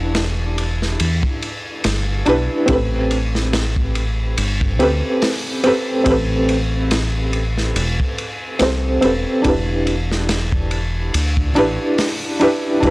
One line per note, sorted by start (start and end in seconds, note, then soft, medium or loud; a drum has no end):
0.00 0.96 E1 loud
0.00 2.26 D4 loud
0.00 2.27 E4 medium
0.00 2.28 G4 medium
0.00 2.29 B4 loud
0.15 snare loud
0.15 ride medium
0.58 ride medium
0.82 snare soft
1.00 1.21 E2 medium
1.00 ride loud
1.23 kick loud
1.42 ride medium
1.84 2.22 G1 medium
1.84 snare loud
1.84 ride medium
2.26 2.48 B1 medium
2.26 2.64 D4 medium
2.26 2.64 E4 medium
2.26 2.65 G4 medium
2.26 2.65 B4 loud
2.26 ride medium
2.66 4.34 A1 loud
2.66 4.74 C4 medium
2.66 4.75 G4 medium
2.66 kick loud
2.66 ride medium
2.70 4.76 A4 medium
2.70 4.77 B4 medium
3.11 ride medium
3.35 snare soft
3.53 snare loud
3.53 ride medium
3.76 kick loud
3.95 ride medium
4.38 4.81 G1 medium
4.38 ride loud
4.61 kick medium
4.79 5.01 D2 medium
4.79 5.59 C4 medium
4.79 5.60 G4 medium
4.79 5.61 A4 medium
4.79 5.61 B4 loud
4.79 ride medium
5.22 snare loud
5.22 open hi-hat medium
5.64 6.02 C4 medium
5.64 6.02 G4 medium
5.64 6.03 A4 medium
5.64 6.03 B4 loud
5.64 ride medium
6.04 7.72 A1 loud
6.04 8.55 C4 medium
6.04 8.56 G4 medium
6.04 kick loud
6.04 ride medium
6.08 8.57 A4 medium
6.08 8.58 B4 loud
6.49 ride medium
6.91 snare loud
6.91 ride medium
7.33 ride medium
7.58 snare soft
7.76 7.96 E1 medium
7.76 ride loud
8.00 kick medium
8.18 ride medium
8.59 8.98 C2 medium
8.59 8.97 C4 medium
8.59 8.98 G4 medium
8.59 8.98 A4 medium
8.59 8.99 C5 medium
8.59 snare loud
8.59 ride medium
9.01 9.24 E1 medium
9.01 9.39 C4 medium
9.01 9.40 G4 medium
9.01 9.41 A4 medium
9.01 9.41 B4 medium
9.01 ride medium
9.42 11.10 E1 loud
9.42 11.50 D4 medium
9.42 11.51 E4 medium
9.42 kick loud
9.42 ride medium
9.46 11.52 G4 medium
9.46 11.53 B4 medium
9.87 ride medium
10.12 snare soft
10.29 snare loud
10.29 ride medium
10.52 kick loud
10.71 ride medium
11.14 11.56 D2 medium
11.14 ride loud
11.37 kick medium
11.55 11.77 A1 medium
11.55 12.35 D4 medium
11.55 12.36 E4 medium
11.55 12.37 G4 medium
11.55 12.37 B4 loud
11.55 ride medium
11.98 snare loud
11.98 open hi-hat medium
12.40 12.78 D4 loud
12.40 12.78 E4 medium
12.40 12.79 G4 medium
12.40 12.79 B4 loud
12.40 ride medium
12.80 12.90 E1 loud
12.80 12.90 D4 medium
12.80 12.90 E4 medium
12.80 kick loud
12.80 ride medium
12.84 12.90 G4 medium
12.84 12.90 B4 loud